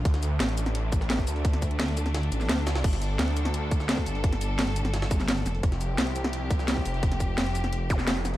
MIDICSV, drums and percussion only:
0, 0, Header, 1, 2, 480
1, 0, Start_track
1, 0, Tempo, 348837
1, 72, Time_signature, 4, 2, 24, 8
1, 11517, End_track
2, 0, Start_track
2, 0, Title_t, "Drums"
2, 71, Note_on_c, 9, 36, 119
2, 71, Note_on_c, 9, 42, 90
2, 191, Note_off_c, 9, 42, 0
2, 191, Note_on_c, 9, 38, 40
2, 191, Note_on_c, 9, 42, 41
2, 209, Note_off_c, 9, 36, 0
2, 311, Note_off_c, 9, 42, 0
2, 311, Note_on_c, 9, 42, 71
2, 311, Note_on_c, 9, 82, 65
2, 312, Note_off_c, 9, 42, 0
2, 312, Note_on_c, 9, 42, 72
2, 329, Note_off_c, 9, 38, 0
2, 449, Note_off_c, 9, 42, 0
2, 449, Note_off_c, 9, 82, 0
2, 551, Note_on_c, 9, 38, 114
2, 551, Note_on_c, 9, 42, 99
2, 671, Note_off_c, 9, 42, 0
2, 671, Note_on_c, 9, 42, 38
2, 689, Note_off_c, 9, 38, 0
2, 791, Note_off_c, 9, 42, 0
2, 791, Note_on_c, 9, 42, 72
2, 791, Note_on_c, 9, 82, 65
2, 911, Note_off_c, 9, 82, 0
2, 911, Note_on_c, 9, 40, 58
2, 911, Note_on_c, 9, 82, 30
2, 929, Note_off_c, 9, 42, 0
2, 1031, Note_on_c, 9, 42, 97
2, 1049, Note_off_c, 9, 40, 0
2, 1049, Note_off_c, 9, 82, 0
2, 1169, Note_off_c, 9, 42, 0
2, 1271, Note_on_c, 9, 36, 96
2, 1271, Note_on_c, 9, 42, 68
2, 1271, Note_on_c, 9, 82, 62
2, 1391, Note_on_c, 9, 38, 48
2, 1392, Note_off_c, 9, 82, 0
2, 1392, Note_on_c, 9, 82, 31
2, 1409, Note_off_c, 9, 36, 0
2, 1409, Note_off_c, 9, 42, 0
2, 1511, Note_off_c, 9, 38, 0
2, 1511, Note_on_c, 9, 38, 118
2, 1511, Note_on_c, 9, 42, 99
2, 1529, Note_off_c, 9, 82, 0
2, 1631, Note_on_c, 9, 36, 58
2, 1632, Note_on_c, 9, 82, 31
2, 1649, Note_off_c, 9, 38, 0
2, 1649, Note_off_c, 9, 42, 0
2, 1751, Note_off_c, 9, 82, 0
2, 1751, Note_on_c, 9, 42, 67
2, 1751, Note_on_c, 9, 46, 79
2, 1751, Note_on_c, 9, 82, 69
2, 1769, Note_off_c, 9, 36, 0
2, 1871, Note_off_c, 9, 42, 0
2, 1871, Note_on_c, 9, 42, 47
2, 1889, Note_off_c, 9, 46, 0
2, 1889, Note_off_c, 9, 82, 0
2, 1991, Note_off_c, 9, 42, 0
2, 1991, Note_on_c, 9, 36, 121
2, 1991, Note_on_c, 9, 42, 100
2, 2111, Note_off_c, 9, 42, 0
2, 2111, Note_on_c, 9, 40, 35
2, 2111, Note_on_c, 9, 42, 45
2, 2129, Note_off_c, 9, 36, 0
2, 2231, Note_off_c, 9, 42, 0
2, 2231, Note_on_c, 9, 36, 64
2, 2231, Note_on_c, 9, 42, 74
2, 2231, Note_on_c, 9, 82, 62
2, 2249, Note_off_c, 9, 40, 0
2, 2352, Note_off_c, 9, 42, 0
2, 2352, Note_on_c, 9, 42, 40
2, 2369, Note_off_c, 9, 36, 0
2, 2369, Note_off_c, 9, 82, 0
2, 2471, Note_off_c, 9, 42, 0
2, 2471, Note_on_c, 9, 38, 121
2, 2471, Note_on_c, 9, 42, 106
2, 2471, Note_on_c, 9, 46, 83
2, 2592, Note_off_c, 9, 42, 0
2, 2592, Note_on_c, 9, 42, 39
2, 2609, Note_off_c, 9, 38, 0
2, 2609, Note_off_c, 9, 46, 0
2, 2712, Note_off_c, 9, 42, 0
2, 2712, Note_on_c, 9, 42, 70
2, 2712, Note_on_c, 9, 82, 64
2, 2832, Note_off_c, 9, 82, 0
2, 2832, Note_on_c, 9, 40, 59
2, 2832, Note_on_c, 9, 82, 32
2, 2849, Note_off_c, 9, 42, 0
2, 2951, Note_on_c, 9, 38, 107
2, 2951, Note_on_c, 9, 42, 80
2, 2952, Note_off_c, 9, 42, 0
2, 2952, Note_on_c, 9, 42, 94
2, 2969, Note_off_c, 9, 40, 0
2, 2969, Note_off_c, 9, 82, 0
2, 3071, Note_off_c, 9, 42, 0
2, 3071, Note_on_c, 9, 42, 38
2, 3089, Note_off_c, 9, 38, 0
2, 3191, Note_off_c, 9, 42, 0
2, 3191, Note_on_c, 9, 42, 67
2, 3191, Note_on_c, 9, 82, 63
2, 3311, Note_off_c, 9, 82, 0
2, 3311, Note_on_c, 9, 38, 37
2, 3311, Note_on_c, 9, 82, 29
2, 3329, Note_off_c, 9, 42, 0
2, 3431, Note_on_c, 9, 42, 79
2, 3432, Note_off_c, 9, 38, 0
2, 3432, Note_off_c, 9, 42, 0
2, 3432, Note_on_c, 9, 38, 120
2, 3432, Note_on_c, 9, 42, 105
2, 3449, Note_off_c, 9, 82, 0
2, 3552, Note_on_c, 9, 82, 30
2, 3569, Note_off_c, 9, 38, 0
2, 3569, Note_off_c, 9, 42, 0
2, 3671, Note_off_c, 9, 82, 0
2, 3671, Note_on_c, 9, 38, 111
2, 3671, Note_on_c, 9, 40, 35
2, 3671, Note_on_c, 9, 42, 86
2, 3671, Note_on_c, 9, 46, 76
2, 3671, Note_on_c, 9, 82, 65
2, 3791, Note_off_c, 9, 38, 0
2, 3791, Note_off_c, 9, 42, 0
2, 3791, Note_on_c, 9, 38, 114
2, 3791, Note_on_c, 9, 42, 82
2, 3809, Note_off_c, 9, 40, 0
2, 3809, Note_off_c, 9, 46, 0
2, 3809, Note_off_c, 9, 82, 0
2, 3911, Note_off_c, 9, 42, 0
2, 3911, Note_on_c, 9, 36, 127
2, 3911, Note_on_c, 9, 42, 96
2, 3911, Note_on_c, 9, 49, 72
2, 3929, Note_off_c, 9, 38, 0
2, 4031, Note_off_c, 9, 42, 0
2, 4031, Note_on_c, 9, 42, 40
2, 4032, Note_on_c, 9, 38, 39
2, 4049, Note_off_c, 9, 36, 0
2, 4049, Note_off_c, 9, 49, 0
2, 4151, Note_off_c, 9, 42, 0
2, 4151, Note_on_c, 9, 42, 73
2, 4151, Note_on_c, 9, 82, 58
2, 4169, Note_off_c, 9, 38, 0
2, 4288, Note_off_c, 9, 82, 0
2, 4289, Note_off_c, 9, 42, 0
2, 4391, Note_on_c, 9, 38, 117
2, 4391, Note_on_c, 9, 42, 94
2, 4511, Note_off_c, 9, 42, 0
2, 4511, Note_on_c, 9, 42, 37
2, 4529, Note_off_c, 9, 38, 0
2, 4631, Note_off_c, 9, 42, 0
2, 4631, Note_on_c, 9, 42, 73
2, 4631, Note_on_c, 9, 82, 59
2, 4751, Note_off_c, 9, 82, 0
2, 4751, Note_on_c, 9, 40, 64
2, 4751, Note_on_c, 9, 82, 30
2, 4769, Note_off_c, 9, 42, 0
2, 4871, Note_on_c, 9, 42, 100
2, 4889, Note_off_c, 9, 40, 0
2, 4889, Note_off_c, 9, 82, 0
2, 5009, Note_off_c, 9, 42, 0
2, 5111, Note_on_c, 9, 36, 109
2, 5111, Note_on_c, 9, 42, 72
2, 5111, Note_on_c, 9, 82, 56
2, 5231, Note_off_c, 9, 82, 0
2, 5231, Note_on_c, 9, 82, 29
2, 5232, Note_on_c, 9, 38, 48
2, 5249, Note_off_c, 9, 36, 0
2, 5249, Note_off_c, 9, 42, 0
2, 5351, Note_off_c, 9, 38, 0
2, 5351, Note_on_c, 9, 38, 123
2, 5351, Note_on_c, 9, 42, 103
2, 5369, Note_off_c, 9, 82, 0
2, 5471, Note_on_c, 9, 36, 65
2, 5471, Note_on_c, 9, 82, 30
2, 5489, Note_off_c, 9, 38, 0
2, 5489, Note_off_c, 9, 42, 0
2, 5591, Note_on_c, 9, 42, 72
2, 5592, Note_off_c, 9, 82, 0
2, 5592, Note_on_c, 9, 46, 83
2, 5592, Note_on_c, 9, 82, 63
2, 5609, Note_off_c, 9, 36, 0
2, 5712, Note_off_c, 9, 42, 0
2, 5712, Note_on_c, 9, 42, 47
2, 5729, Note_off_c, 9, 46, 0
2, 5729, Note_off_c, 9, 82, 0
2, 5831, Note_off_c, 9, 42, 0
2, 5831, Note_on_c, 9, 36, 126
2, 5831, Note_on_c, 9, 42, 99
2, 5951, Note_off_c, 9, 42, 0
2, 5951, Note_on_c, 9, 40, 37
2, 5951, Note_on_c, 9, 42, 41
2, 5969, Note_off_c, 9, 36, 0
2, 6071, Note_off_c, 9, 42, 0
2, 6071, Note_on_c, 9, 42, 69
2, 6072, Note_off_c, 9, 42, 0
2, 6072, Note_on_c, 9, 42, 68
2, 6072, Note_on_c, 9, 82, 56
2, 6089, Note_off_c, 9, 40, 0
2, 6209, Note_off_c, 9, 42, 0
2, 6209, Note_off_c, 9, 82, 0
2, 6311, Note_on_c, 9, 38, 123
2, 6311, Note_on_c, 9, 46, 81
2, 6312, Note_off_c, 9, 38, 0
2, 6312, Note_on_c, 9, 38, 127
2, 6312, Note_on_c, 9, 42, 92
2, 6432, Note_off_c, 9, 42, 0
2, 6432, Note_on_c, 9, 42, 36
2, 6449, Note_off_c, 9, 38, 0
2, 6449, Note_off_c, 9, 46, 0
2, 6551, Note_off_c, 9, 42, 0
2, 6551, Note_on_c, 9, 42, 72
2, 6552, Note_off_c, 9, 42, 0
2, 6552, Note_on_c, 9, 42, 69
2, 6552, Note_on_c, 9, 82, 59
2, 6672, Note_off_c, 9, 82, 0
2, 6672, Note_on_c, 9, 40, 62
2, 6672, Note_on_c, 9, 82, 29
2, 6689, Note_off_c, 9, 42, 0
2, 6791, Note_on_c, 9, 38, 107
2, 6791, Note_on_c, 9, 42, 85
2, 6792, Note_off_c, 9, 42, 0
2, 6792, Note_on_c, 9, 42, 96
2, 6809, Note_off_c, 9, 40, 0
2, 6809, Note_off_c, 9, 82, 0
2, 6911, Note_off_c, 9, 38, 0
2, 6911, Note_off_c, 9, 42, 0
2, 6911, Note_on_c, 9, 38, 111
2, 6911, Note_on_c, 9, 42, 84
2, 7031, Note_off_c, 9, 38, 0
2, 7031, Note_off_c, 9, 42, 0
2, 7031, Note_on_c, 9, 36, 108
2, 7031, Note_on_c, 9, 38, 46
2, 7031, Note_on_c, 9, 42, 74
2, 7032, Note_off_c, 9, 42, 0
2, 7032, Note_on_c, 9, 42, 66
2, 7032, Note_on_c, 9, 82, 58
2, 7151, Note_off_c, 9, 38, 0
2, 7151, Note_on_c, 9, 38, 39
2, 7152, Note_off_c, 9, 38, 0
2, 7152, Note_off_c, 9, 82, 0
2, 7152, Note_on_c, 9, 38, 41
2, 7152, Note_on_c, 9, 82, 29
2, 7169, Note_off_c, 9, 36, 0
2, 7169, Note_off_c, 9, 42, 0
2, 7271, Note_off_c, 9, 38, 0
2, 7271, Note_on_c, 9, 38, 120
2, 7271, Note_on_c, 9, 42, 91
2, 7272, Note_off_c, 9, 38, 0
2, 7272, Note_off_c, 9, 42, 0
2, 7272, Note_on_c, 9, 38, 127
2, 7272, Note_on_c, 9, 42, 100
2, 7290, Note_off_c, 9, 82, 0
2, 7392, Note_on_c, 9, 82, 28
2, 7409, Note_off_c, 9, 38, 0
2, 7409, Note_off_c, 9, 42, 0
2, 7511, Note_on_c, 9, 42, 68
2, 7512, Note_off_c, 9, 82, 0
2, 7512, Note_on_c, 9, 40, 37
2, 7512, Note_on_c, 9, 46, 84
2, 7512, Note_on_c, 9, 82, 60
2, 7631, Note_off_c, 9, 42, 0
2, 7631, Note_on_c, 9, 42, 46
2, 7649, Note_off_c, 9, 40, 0
2, 7649, Note_off_c, 9, 46, 0
2, 7649, Note_off_c, 9, 82, 0
2, 7751, Note_off_c, 9, 42, 0
2, 7751, Note_on_c, 9, 36, 127
2, 7751, Note_on_c, 9, 42, 86
2, 7871, Note_on_c, 9, 38, 39
2, 7872, Note_off_c, 9, 42, 0
2, 7872, Note_on_c, 9, 42, 37
2, 7889, Note_off_c, 9, 36, 0
2, 7991, Note_off_c, 9, 42, 0
2, 7991, Note_on_c, 9, 42, 74
2, 7992, Note_off_c, 9, 42, 0
2, 7992, Note_on_c, 9, 42, 66
2, 7992, Note_on_c, 9, 82, 57
2, 8009, Note_off_c, 9, 38, 0
2, 8129, Note_off_c, 9, 42, 0
2, 8129, Note_off_c, 9, 82, 0
2, 8231, Note_on_c, 9, 38, 115
2, 8231, Note_on_c, 9, 42, 86
2, 8232, Note_off_c, 9, 38, 0
2, 8232, Note_off_c, 9, 42, 0
2, 8232, Note_on_c, 9, 38, 127
2, 8232, Note_on_c, 9, 42, 96
2, 8352, Note_off_c, 9, 42, 0
2, 8352, Note_on_c, 9, 42, 35
2, 8370, Note_off_c, 9, 38, 0
2, 8471, Note_off_c, 9, 42, 0
2, 8471, Note_on_c, 9, 42, 70
2, 8472, Note_off_c, 9, 42, 0
2, 8472, Note_on_c, 9, 42, 68
2, 8472, Note_on_c, 9, 82, 59
2, 8592, Note_off_c, 9, 82, 0
2, 8592, Note_on_c, 9, 40, 62
2, 8592, Note_on_c, 9, 82, 28
2, 8609, Note_off_c, 9, 42, 0
2, 8711, Note_on_c, 9, 42, 91
2, 8729, Note_off_c, 9, 40, 0
2, 8729, Note_off_c, 9, 82, 0
2, 8849, Note_off_c, 9, 42, 0
2, 8951, Note_on_c, 9, 36, 112
2, 8951, Note_on_c, 9, 42, 70
2, 8951, Note_on_c, 9, 82, 54
2, 9072, Note_off_c, 9, 82, 0
2, 9072, Note_on_c, 9, 38, 48
2, 9072, Note_on_c, 9, 82, 27
2, 9089, Note_off_c, 9, 36, 0
2, 9089, Note_off_c, 9, 42, 0
2, 9192, Note_off_c, 9, 38, 0
2, 9192, Note_on_c, 9, 38, 127
2, 9192, Note_on_c, 9, 42, 101
2, 9209, Note_off_c, 9, 82, 0
2, 9311, Note_on_c, 9, 36, 64
2, 9311, Note_on_c, 9, 82, 26
2, 9329, Note_off_c, 9, 38, 0
2, 9329, Note_off_c, 9, 42, 0
2, 9431, Note_off_c, 9, 82, 0
2, 9431, Note_on_c, 9, 42, 71
2, 9431, Note_on_c, 9, 46, 89
2, 9431, Note_on_c, 9, 82, 59
2, 9449, Note_off_c, 9, 36, 0
2, 9551, Note_off_c, 9, 42, 0
2, 9551, Note_on_c, 9, 42, 44
2, 9569, Note_off_c, 9, 46, 0
2, 9569, Note_off_c, 9, 82, 0
2, 9671, Note_off_c, 9, 42, 0
2, 9671, Note_on_c, 9, 36, 122
2, 9671, Note_on_c, 9, 42, 93
2, 9791, Note_off_c, 9, 42, 0
2, 9791, Note_on_c, 9, 40, 34
2, 9791, Note_on_c, 9, 42, 46
2, 9809, Note_off_c, 9, 36, 0
2, 9911, Note_off_c, 9, 42, 0
2, 9911, Note_on_c, 9, 36, 69
2, 9911, Note_on_c, 9, 42, 73
2, 9911, Note_on_c, 9, 82, 60
2, 9929, Note_off_c, 9, 40, 0
2, 10049, Note_off_c, 9, 36, 0
2, 10049, Note_off_c, 9, 42, 0
2, 10049, Note_off_c, 9, 82, 0
2, 10151, Note_on_c, 9, 38, 114
2, 10151, Note_on_c, 9, 42, 91
2, 10151, Note_on_c, 9, 46, 87
2, 10271, Note_off_c, 9, 42, 0
2, 10271, Note_on_c, 9, 42, 36
2, 10289, Note_off_c, 9, 38, 0
2, 10289, Note_off_c, 9, 46, 0
2, 10391, Note_off_c, 9, 42, 0
2, 10391, Note_on_c, 9, 42, 72
2, 10391, Note_on_c, 9, 82, 59
2, 10511, Note_off_c, 9, 82, 0
2, 10511, Note_on_c, 9, 40, 58
2, 10511, Note_on_c, 9, 82, 29
2, 10529, Note_off_c, 9, 42, 0
2, 10631, Note_on_c, 9, 42, 92
2, 10649, Note_off_c, 9, 40, 0
2, 10649, Note_off_c, 9, 82, 0
2, 10769, Note_off_c, 9, 42, 0
2, 10871, Note_on_c, 9, 36, 100
2, 10871, Note_on_c, 9, 38, 47
2, 10871, Note_on_c, 9, 42, 69
2, 10872, Note_off_c, 9, 42, 0
2, 10872, Note_on_c, 9, 42, 62
2, 10872, Note_on_c, 9, 82, 57
2, 10991, Note_off_c, 9, 38, 0
2, 10991, Note_off_c, 9, 82, 0
2, 10991, Note_on_c, 9, 38, 39
2, 10991, Note_on_c, 9, 82, 27
2, 11009, Note_off_c, 9, 36, 0
2, 11009, Note_off_c, 9, 42, 0
2, 11111, Note_off_c, 9, 38, 0
2, 11111, Note_on_c, 9, 38, 118
2, 11111, Note_on_c, 9, 42, 91
2, 11129, Note_off_c, 9, 82, 0
2, 11231, Note_on_c, 9, 82, 27
2, 11249, Note_off_c, 9, 38, 0
2, 11249, Note_off_c, 9, 42, 0
2, 11351, Note_off_c, 9, 82, 0
2, 11351, Note_on_c, 9, 40, 34
2, 11351, Note_on_c, 9, 42, 69
2, 11351, Note_on_c, 9, 46, 84
2, 11351, Note_on_c, 9, 82, 59
2, 11471, Note_off_c, 9, 42, 0
2, 11471, Note_on_c, 9, 42, 45
2, 11489, Note_off_c, 9, 40, 0
2, 11489, Note_off_c, 9, 46, 0
2, 11489, Note_off_c, 9, 82, 0
2, 11517, Note_off_c, 9, 42, 0
2, 11517, End_track
0, 0, End_of_file